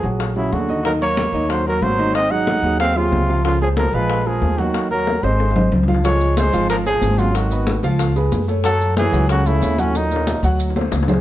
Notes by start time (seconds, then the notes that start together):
0.03 A#1 F#3 F#4 G#4, high bongo, high conga
0.20 high bongo, high conga
0.36 C#3 F#3 E4 F#4 G#4, high bongo, high conga
0.52 D#2 D3 F#4, high bongo, low bongo, high conga
0.69 D#3 D#4 D#5, high bongo, high conga
0.85 D#3 F#3 D#4 A#4 D#5, high bongo, high conga
1.01 F#3 A#3 F#4 A#4 C#5, high conga
1.17 high bongo, high conga
1.32 D#2 D#3 D#4 D#5, high bongo, high conga
1.50 F#3 C5, high bongo, high conga
1.66 F#3 F#4 A#4, high bongo, high conga
1.81 G#1 F#3 C5, high bongo, low bongo, high conga
1.98 D#3 D#4 D#5, high bongo, high conga
2.15 C4 D#5, high bongo, high conga
2.31 F#3 D#4 F#4 G#4 F#5, high conga
2.47 high bongo, high conga
2.63 D#2 F#3 F#4 G#4, high bongo, high conga
2.80 C4 F5, high bongo, high conga
2.96 C3 F#3 F4 G#4, high bongo, high conga
3.12 C#2, high bongo, low bongo, high conga
3.28 F3 F4 F5, high bongo, high conga
3.45 C#3 F3 F4 F5, high bongo, high conga
3.61 F3 G#3 G#4 C5, high conga
3.77 F3 A#4, high bongo, high conga
3.92 A#1 F3 G#3 F4 B4 F5, high bongo, high conga
4.10 high bongo, high conga
4.26 F3 G#3 G#4 A#4, high bongo, high conga
4.41 D#2, high bongo, low bongo, high conga
4.58 D#3 F#3 F#4 F#5, high bongo, high conga
4.74 high bongo, high conga
4.91 F#3 A#3 A#4 C#5, high conga
5.07 high bongo, high conga
5.23 G#1 G#3 C4 C5 D#5, high bongo
5.40 high bongo
5.51 high bongo
5.56 C4 C5 D#5, low conga
5.72 C#2, low conga
5.83 low bongo
5.88 F3 F4 F5, low conga
5.94 low bongo
6.04 F3 G#3 F4 C#5 F5, high bongo, high conga, maracas
6.21 high conga, maracas
6.37 G#3 G#4 C5, high bongo, high conga, maracas
6.53 G#1 F3 F4 F5, high bongo, high conga, maracas
6.69 F3 A#4, high bongo, high conga, maracas
6.86 F3 G#3 G#4 C5, high bongo, high conga, maracas
7.01 G#1, high bongo, low bongo, high conga, maracas
7.18 C#3 F#3 F4 F#4 F#5, high bongo, high conga, maracas
7.35 D#3 F#4, high bongo, high conga, maracas
7.51 B3 B4 D#5, high conga, maracas
7.67 high bongo, high conga, maracas
7.83 C#2 F3 F4 F5, high bongo, high conga, maracas
7.99 high bongo, high conga, maracas
8.16 G#3 G#4 B4, high bongo, high conga, maracas
8.31 F#2, high bongo, low bongo, high conga, maracas
8.48 A3 A4 C#5, high bongo, high conga, maracas
8.64 F#3 F#4 A4 F#5, high bongo, high conga, maracas
8.81 high conga, maracas
8.97 E3 A3 G#4 A4 C#5, high bongo, high conga, maracas
9.12 C#2 F#3 F#4 F#5, high bongo, high conga, maracas
9.29 C#3 F#4, high bongo, high conga, maracas
9.45 C#3 A3 E4 A4 C#5, high bongo, high conga, maracas
9.61 D#2, high bongo, low bongo, high conga, maracas
9.78 A2 F#3 C#4 F#4 F#5, high bongo, high conga, maracas
9.95 A#2 D#4, high bongo, high conga, maracas
10.11 A#3 A#4 C#5, high conga, maracas
10.16 high bongo
10.27 high conga, maracas
10.43 D2 F#3 F#4 F#5, high conga, maracas
10.59 high conga, maracas
10.70 low bongo
10.76 A3 A4 C5, high conga, maracas
10.81 low bongo
10.91 C#2, low bongo, high conga, maracas
11.03 low bongo
11.08 G#3 G#4 C5, low conga, maracas
11.13 low bongo